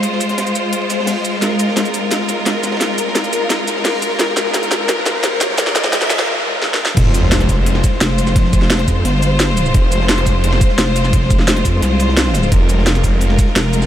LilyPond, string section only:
\new Staff \with { instrumentName = "String section" } { \time 4/4 \key f \minor \tempo 4 = 173 << { c''1 | bes'1~ | bes'1~ | bes'1~ |
bes'1 | c''1~ | c''1~ | c''1~ |
c''1 | bes'1 | } \\ { <aes f'>1~ | <aes f'>1~ | <aes f'>1~ | <aes f'>1~ |
<aes f'>1 | <aes f'>1~ | <aes f'>1~ | <aes f'>1~ |
<aes f'>1~ | <aes f'>1 | } >> }